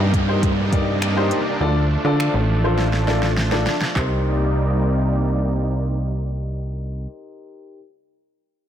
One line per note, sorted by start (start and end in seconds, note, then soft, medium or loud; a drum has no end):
0.00 1.33 G2 medium
0.00 1.59 C3 medium
0.00 1.59 G3 medium
0.00 1.59 A#3 medium
0.00 3.92 D4 medium
0.00 1.59 D#4 loud
0.00 downlifter medium
0.14 kick medium
0.14 closed hi-hat medium
0.28 0.49 D#4 medium
0.28 0.49 G4 medium
0.28 0.49 A#4 medium
0.28 0.49 C5 medium
0.43 kick medium
0.43 closed hi-hat medium
0.72 0.93 D#4 medium
0.72 0.93 G4 medium
0.72 0.93 A#4 medium
0.72 0.94 D5 medium
0.72 kick medium
0.72 closed hi-hat medium
1.02 finger snap loud
1.02 closed hi-hat medium
1.16 1.37 D#4 medium
1.16 1.37 G4 medium
1.16 1.38 A#4 medium
1.16 1.38 C5 medium
1.31 closed hi-hat medium
1.61 1.97 D2 loud
1.61 3.94 F3 medium
1.61 3.94 A3 medium
1.61 1.82 D4 medium
1.61 1.82 F4 medium
1.61 1.82 A4 medium
1.61 1.82 D5 medium
2.05 2.29 D3 medium
2.05 2.33 D4 medium
2.05 2.33 F4 medium
2.05 2.33 A4 medium
2.05 2.33 D5 medium
2.20 finger snap loud
2.34 3.68 A1 medium
2.64 2.85 D4 medium
2.64 2.85 F4 medium
2.64 2.85 A4 medium
2.64 2.85 C5 medium
2.79 snare medium
2.93 snare soft
3.07 3.28 D4 medium
3.07 3.28 F4 medium
3.07 3.29 A4 medium
3.07 3.29 D5 medium
3.07 snare medium
3.23 snare medium
3.37 snare medium
3.52 3.73 D4 medium
3.52 3.73 F4 medium
3.52 3.73 A4 medium
3.52 3.73 D5 medium
3.52 snare medium
3.67 snare medium
3.82 snare medium
3.94 7.07 C2 medium
3.94 7.07 C3 medium
3.94 7.08 G3 medium
3.94 7.08 A#3 medium
3.94 7.76 D#4 medium
3.94 7.07 D#4 medium
3.94 7.77 G4 medium
3.94 7.78 A#4 medium
3.94 7.08 D5 medium
3.94 kick loud
3.94 clap medium
3.98 7.78 C5 medium